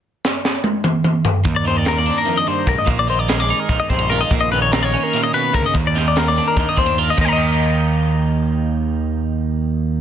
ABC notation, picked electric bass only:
X:1
M:7/8
L:1/16
Q:1/4=147
K:Eb
V:1 name="Picked electric bass" clef=bass
z12 z2 | E,,8 z4 _C,, z | B,,,8 B,,, z B,,,4 | B,,,8 z4 D,, z |
E,,8 E,, z E,,4 | E,,12- E,,2- | E,,12- E,,2 |]